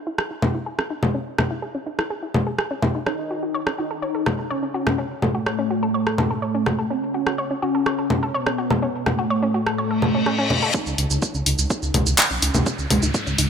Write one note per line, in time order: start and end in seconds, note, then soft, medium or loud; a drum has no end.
0.07 0.18 E4 medium
0.18 0.27 G#4 medium
0.18 cross-stick soft
0.31 0.41 E4 medium
0.42 0.47 E4 medium
0.42 low conga medium
0.55 0.59 E4 medium
0.66 0.75 G#4 medium
0.79 0.86 C#4 medium
0.79 cross-stick soft
0.90 0.95 D#4 medium
1.03 1.14 E4 medium
1.03 low conga medium
1.14 1.19 C#4 medium
1.38 1.43 D#4 medium
1.38 cross-stick soft
1.38 low conga medium
1.51 1.55 E4 medium
1.62 1.71 G#4 medium
1.75 1.79 C#4 medium
1.86 1.91 D#4 medium
1.99 2.10 E4 medium
1.99 cross-stick soft
2.10 2.19 G#4 medium
2.23 2.34 E4 medium
2.34 2.43 G#4 medium
2.34 low conga medium
2.47 2.55 G#4 medium
2.59 2.63 G#4 loud
2.59 cross-stick soft
2.71 2.75 C#4 medium
2.82 2.91 E4 loud
2.82 low conga medium
2.95 2.99 D#4 medium
3.06 3.11 C#4 medium
3.06 3.69 D#4 loud
3.06 cross-stick medium
3.31 3.35 F#4 medium
3.43 3.47 F#4 medium
3.54 3.63 C#5 medium
3.67 3.71 C#4 medium
3.67 cross-stick medium
3.78 4.41 D#4 loud
3.78 3.83 F#4 medium
3.91 4.02 A4 medium
4.02 4.11 C#5 medium
4.15 4.25 A4 medium
4.26 4.31 A4 medium
4.26 cross-stick medium
4.26 low conga medium
4.39 4.43 A4 medium
4.50 5.13 C#4 loud
4.50 4.59 C#5 medium
4.63 4.71 C#4 medium
4.74 4.79 F#4 medium
4.87 4.98 A4 medium
4.87 cross-stick medium
4.87 low conga medium
4.98 5.03 C#4 medium
5.22 6.92 A3 loud
5.22 5.27 F#4 medium
5.22 low conga medium
5.35 5.39 F#4 medium
5.46 5.55 C#5 medium
5.46 cross-stick medium
5.59 5.63 C#4 medium
5.71 5.75 F#4 medium
5.83 5.94 A4 medium
5.94 6.03 C#5 medium
6.07 6.17 A4 medium
6.07 cross-stick soft
6.18 6.23 A4 medium
6.18 low conga medium
6.31 6.35 A4 medium
6.42 6.51 C#5 medium
6.55 6.62 C#4 medium
6.66 6.71 F#4 medium
6.66 cross-stick soft
6.66 low conga medium
6.79 6.90 A4 medium
6.90 7.53 C#4 loud
6.90 6.95 C#4 medium
7.14 7.19 F#4 medium
7.27 7.31 F#4 medium
7.27 cross-stick soft
7.38 7.47 C#5 medium
7.51 7.55 C#4 medium
7.62 8.36 C#4 loud
7.62 7.67 F#4 medium
7.75 7.86 A4 medium
7.86 7.95 C#5 medium
7.86 cross-stick soft
7.99 8.09 A4 medium
8.10 8.15 A4 medium
8.10 low conga medium
8.23 8.27 A4 medium
8.34 9.08 B3 loud
8.34 8.43 C#5 medium
8.47 8.55 C#4 medium
8.47 cross-stick soft
8.58 8.63 F#4 medium
8.71 8.82 A4 medium
8.71 low conga medium
8.82 8.87 C#4 medium
9.06 10.65 A3 loud
9.06 9.11 F#4 medium
9.06 cross-stick soft
9.06 low conga medium
9.19 9.23 F#4 medium
9.30 9.39 C#5 medium
9.43 9.47 C#4 medium
9.54 9.59 F#4 medium
9.67 9.78 A4 medium
9.67 cross-stick soft
9.78 9.87 C#5 medium
9.78 reverse cymbal medium
9.91 10.01 A4 medium
10.02 10.11 A4 medium
10.02 low conga medium
10.15 10.25 C#4 medium
10.26 10.35 C#4 loud
10.26 cross-stick soft
10.39 10.49 C#4 loud
10.50 10.59 C#4 medium
10.50 low conga medium
10.62 10.70 A4 medium
10.74 10.79 C#4 medium
10.74 11.37 D#4 loud
10.74 kick loud
10.74 riser medium
10.74 shaker medium
10.86 10.94 C#2 medium
10.86 shaker soft
10.98 11.06 C#2 loud
10.98 11.03 D#4 medium
10.98 open hi-hat medium
11.10 11.18 C#2 medium
11.10 11.15 D#4 medium
11.10 shaker medium
11.22 11.31 G#4 medium
11.22 kick loud
11.22 shaker medium
11.35 11.42 C#2 medium
11.35 11.39 C#4 medium
11.35 shaker soft
11.46 11.54 C#2 loud
11.46 12.20 D#4 loud
11.46 11.51 D#4 medium
11.46 open hi-hat loud
11.59 11.66 C#2 medium
11.59 11.70 E4 medium
11.59 shaker medium
11.70 11.79 G#4 medium
11.70 kick loud
11.70 shaker medium
11.82 11.90 C#2 medium
11.82 11.93 E4 medium
11.82 shaker soft
11.94 12.02 C#2 loud
11.94 11.99 E4 medium
11.94 open hi-hat loud
11.94 low conga medium
12.06 12.14 C#2 medium
12.06 12.11 E4 medium
12.06 shaker medium
12.18 12.81 C#4 loud
12.18 12.27 G#4 medium
12.18 kick loud
12.18 clap loud
12.31 12.38 B1 medium
12.31 12.38 C#4 medium
12.31 shaker soft
12.42 12.50 C#2 loud
12.42 12.47 D#4 medium
12.42 open hi-hat loud
12.55 12.62 C#2 medium
12.55 12.66 E4 medium
12.55 low conga medium
12.55 shaker medium
12.66 12.71 C#4 medium
12.66 kick loud
12.66 shaker medium
12.79 12.86 C#2 medium
12.79 shaker soft
12.90 12.98 C#2 medium
12.90 13.50 G#3 loud
12.90 12.95 D#4 medium
12.90 open hi-hat loud
12.90 low conga medium
13.03 13.10 C#2 medium
13.03 13.07 D#4 medium
13.03 shaker medium
13.14 13.23 G#4 medium
13.14 kick loud
13.14 shaker medium
13.27 13.34 C#2 medium
13.27 13.31 C#4 medium
13.27 shaker soft
13.38 13.46 C#2 loud
13.38 13.43 D#4 medium
13.38 open hi-hat loud